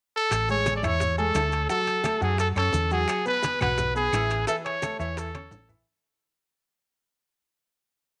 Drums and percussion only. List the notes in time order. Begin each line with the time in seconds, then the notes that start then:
0.31 high bongo, high conga, high timbale, claves, maracas
0.49 high conga, maracas
0.66 high bongo, high conga, high timbale, maracas
0.83 high bongo, high conga, low conga, high timbale, claves, maracas
1.00 high bongo, high conga, low conga, maracas
1.18 high bongo, high conga, maracas
1.35 high bongo, low bongo, high conga, high timbale, low timbale, claves, maracas
1.52 high bongo, high timbale, maracas
1.69 high bongo, high conga, maracas
1.87 high conga, high timbale, maracas
2.04 high bongo, high conga, high timbale, claves, maracas
2.21 high bongo, high conga, maracas
2.38 high bongo, high conga, high timbale, maracas
2.55 high bongo, high conga, high timbale, claves, maracas
2.73 high bongo, low bongo, high conga, maracas
2.90 high bongo, maracas
3.08 high bongo, high conga, high timbale, claves, maracas
3.26 high conga, maracas
3.43 high bongo, high conga, high timbale, maracas
3.60 high bongo, high conga, low conga, high timbale, claves, maracas
3.78 high bongo, high conga, low conga, maracas
3.96 high bongo, high conga, maracas
4.13 high bongo, low bongo, high conga, high timbale, claves, maracas
4.30 high bongo, high timbale, maracas
4.47 high bongo, high conga, maracas
4.65 high conga, high timbale, maracas
4.82 high bongo, high conga, high timbale, claves, maracas
4.99 high bongo, high conga, maracas
5.17 high bongo, high conga, high timbale, maracas
5.34 high bongo, high conga, high timbale, claves, maracas
5.51 high bongo, low bongo, low conga, low timbale, maracas
5.69 high bongo, low conga, maracas